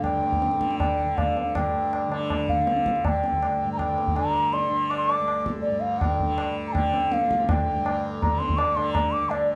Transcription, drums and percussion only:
0.04 tabla na, tabla ge
0.23 tabla te
0.32 tabla ge
0.42 tabla te
0.51 tabla te
0.61 tabla ke
0.71 tabla te
0.80 tabla na, tabla ge
0.99 tabla ge
1.18 tabla na, tabla ge
1.37 tabla te
1.55 tabla na, tabla ge
1.93 tabla na
2.12 tabla na
2.30 tabla na, tabla ge
2.48 tabla ge
2.67 tabla te
2.77 tabla te
2.86 tabla ke
2.96 tabla te
3.05 tabla na, tabla ge
3.23 tabla te
3.33 tabla ge
3.43 tabla na
3.79 tabla na, tabla ge
3.98 tabla te
4.07 tabla ge
4.16 tabla na
4.53 tabla tin
4.91 tabla na
5.09 tabla na
5.28 tabla na
5.46 tabla ke
5.64 tabla tin
6.01 tabla na, tabla ge
6.20 tabla ge
6.38 tabla na
6.75 tabla na, tabla ge
6.94 tabla te
7.12 tabla te
7.22 tabla te
7.31 tabla ke
7.40 tabla te
7.49 tabla na, tabla ge
7.86 tabla na
8.23 tabla na, tabla ge
8.40 tabla te
8.49 tabla ge
8.58 tabla na
8.77 tabla na
8.95 tabla na, tabla ge
9.31 tabla na

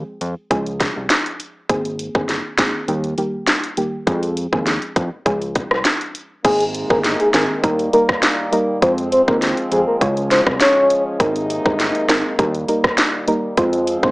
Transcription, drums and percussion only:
0.21 closed hi-hat
0.51 kick, closed hi-hat
0.66 closed hi-hat
0.80 kick, snare, closed hi-hat
1.10 snare, closed hi-hat
1.26 closed hi-hat
1.40 closed hi-hat
1.69 kick, closed hi-hat
1.85 closed hi-hat
1.99 closed hi-hat
2.15 kick
2.29 snare, closed hi-hat
2.58 kick, snare, closed hi-hat
2.88 closed hi-hat
3.04 closed hi-hat
3.18 closed hi-hat
3.47 snare, closed hi-hat
3.64 closed hi-hat
3.77 closed hi-hat
4.07 kick, closed hi-hat
4.23 closed hi-hat
4.37 closed hi-hat
4.53 kick
4.67 snare, closed hi-hat
4.82 closed hi-hat
4.96 kick, closed hi-hat
5.26 kick, closed hi-hat
5.42 closed hi-hat
5.55 kick, closed hi-hat
5.71 cross-stick
5.85 snare, closed hi-hat
6.01 closed hi-hat
6.15 closed hi-hat
6.45 kick, closed hi-hat, crash
6.60 closed hi-hat
6.75 closed hi-hat
6.90 kick
7.04 snare, closed hi-hat
7.20 closed hi-hat
7.34 snare, closed hi-hat
7.64 kick, closed hi-hat
7.79 closed hi-hat
7.93 closed hi-hat
8.09 kick, cross-stick
8.23 snare, closed hi-hat
8.53 closed hi-hat
8.82 kick, closed hi-hat
8.98 closed hi-hat
9.12 closed hi-hat
9.28 kick
9.42 snare, closed hi-hat
9.57 closed hi-hat
9.72 closed hi-hat
10.01 kick, closed hi-hat
10.17 closed hi-hat
10.31 snare, closed hi-hat
10.47 kick, cross-stick
10.60 snare, closed hi-hat
10.90 closed hi-hat
11.20 kick, closed hi-hat
11.36 closed hi-hat
11.50 closed hi-hat
11.66 kick
11.80 snare, closed hi-hat
11.95 closed hi-hat
12.09 snare, closed hi-hat
12.39 kick, closed hi-hat
12.55 closed hi-hat
12.68 closed hi-hat
12.84 kick, cross-stick
12.98 snare, closed hi-hat
13.28 closed hi-hat
13.57 kick, closed hi-hat
13.73 closed hi-hat
13.87 closed hi-hat
14.03 kick

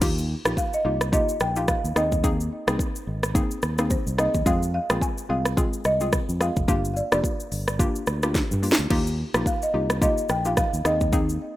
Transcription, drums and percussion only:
0.02 kick, crash, shaker
0.18 shaker
0.45 cross-stick, shaker
0.57 kick, shaker
0.73 shaker
1.01 cross-stick, shaker
1.13 kick, shaker
1.29 shaker
1.40 cross-stick, shaker
1.56 shaker
1.68 kick, cross-stick, shaker
1.85 shaker
1.96 cross-stick, shaker
2.12 kick, shaker
2.24 kick, shaker
2.40 shaker
2.68 cross-stick, shaker
2.79 kick, shaker
2.96 shaker
3.23 cross-stick, shaker
3.35 kick, shaker
3.51 shaker
3.62 cross-stick, shaker
3.78 cross-stick, shaker
3.90 kick, shaker
4.07 shaker
4.18 cross-stick, shaker
4.34 kick, shaker
4.46 kick, shaker
4.63 shaker
4.90 cross-stick, shaker
5.01 kick, shaker
5.18 shaker
5.45 cross-stick, shaker
5.57 kick, shaker
5.73 shaker
5.84 cross-stick, shaker
6.00 shaker
6.12 kick, cross-stick, shaker
6.29 shaker
6.41 cross-stick, shaker
6.56 kick, shaker
6.68 kick, shaker
6.85 shaker
6.97 shaker
7.12 cross-stick, shaker
7.24 kick, shaker
7.40 shaker
7.52 open hi-hat, shaker
7.68 cross-stick, shaker
7.79 kick, shaker
7.95 shaker
8.07 cross-stick, shaker
8.23 cross-stick, shaker
8.35 kick, snare, shaker
8.51 mid tom, shaker
8.63 open hi-hat, shaker
8.72 snare
8.79 shaker
8.90 kick, crash
9.07 shaker
9.34 cross-stick, shaker
9.46 kick, shaker
9.62 shaker
9.90 cross-stick, shaker
10.02 kick, shaker
10.18 shaker
10.29 cross-stick, shaker
10.45 shaker
10.57 kick, cross-stick, shaker
10.74 shaker
10.85 cross-stick, shaker
11.01 kick, shaker
11.13 kick, shaker
11.29 shaker

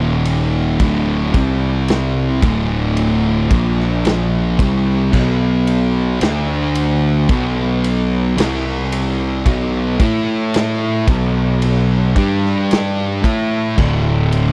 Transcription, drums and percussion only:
0.25 ride
0.80 kick, ride
1.34 kick, ride
1.88 snare, ride
2.42 kick, ride
2.97 ride
3.51 kick, ride
3.80 snare
4.05 snare, ride
4.59 kick, ride
5.13 kick, crash
5.67 ride
6.21 snare, ride
6.75 ride
7.29 kick, ride
7.84 ride
8.38 snare, ride
8.92 ride
9.46 kick, ride
10.00 kick, ride
10.54 snare, ride
11.08 kick, ride
11.62 ride
12.16 kick, ride
12.45 snare
12.71 snare, ride
13.24 kick, ride
13.78 kick, crash
14.32 ride

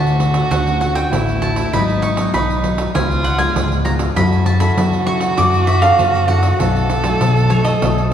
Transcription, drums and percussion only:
0.07 pandeiro
0.20 pandeiro
0.34 pandeiro
0.51 pandeiro
0.67 pandeiro
0.81 pandeiro
0.95 pandeiro
1.13 pandeiro
1.29 pandeiro
1.42 pandeiro
1.56 pandeiro
1.73 pandeiro
1.89 pandeiro
2.03 pandeiro
2.17 pandeiro
2.34 pandeiro
2.50 pandeiro
2.64 pandeiro
2.78 pandeiro
2.95 pandeiro
3.11 pandeiro
3.24 pandeiro
3.38 pandeiro
3.56 pandeiro
3.72 pandeiro
3.85 pandeiro
3.99 pandeiro
4.16 pandeiro
4.32 pandeiro
4.46 pandeiro
4.60 pandeiro
4.78 pandeiro
4.93 pandeiro
5.07 pandeiro
5.21 pandeiro
5.38 pandeiro
5.54 pandeiro
5.67 pandeiro
5.82 pandeiro
5.99 pandeiro
6.15 pandeiro
6.28 pandeiro
6.43 pandeiro
6.60 pandeiro
6.76 pandeiro
6.90 pandeiro
7.04 pandeiro
7.21 pandeiro
7.37 pandeiro
7.50 pandeiro
7.65 pandeiro
7.82 pandeiro
7.98 pandeiro

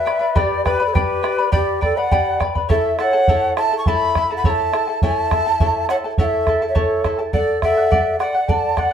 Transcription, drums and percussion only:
0.07 bombo rim
0.36 bombo low
0.66 bombo rim, bombo low
0.95 bombo low
1.24 bombo rim
1.52 bombo low
1.82 bombo low
2.12 bombo low
2.41 bombo rim, bombo low
2.55 bombo low
2.70 bombo low
2.99 bombo rim
3.28 bombo low
3.57 bombo rim
3.86 bombo low
4.15 bombo rim, bombo low
4.44 bombo low
4.74 bombo rim
5.02 bombo low
5.31 bombo rim, bombo low
5.60 bombo low
5.89 bombo rim
6.18 bombo low
6.47 bombo rim, bombo low
6.76 bombo low
7.04 bombo rim, bombo low
7.33 bombo low
7.62 bombo rim, bombo low
7.92 bombo low
8.20 bombo rim
8.49 bombo low
8.77 bombo rim, bombo low

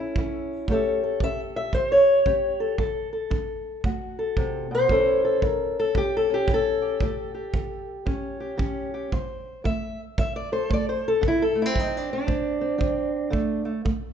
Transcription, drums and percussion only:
0.16 kick
0.68 kick
1.20 kick
1.73 kick
2.26 kick
2.78 kick
3.31 kick
3.84 kick
4.37 kick
4.89 kick
5.42 kick
5.95 kick
6.48 kick
7.00 kick
7.54 kick
8.07 kick
8.59 kick
9.12 kick
9.65 kick
10.18 kick
10.71 kick
11.23 kick
11.76 kick
12.28 kick
12.81 kick
13.33 kick
13.86 kick

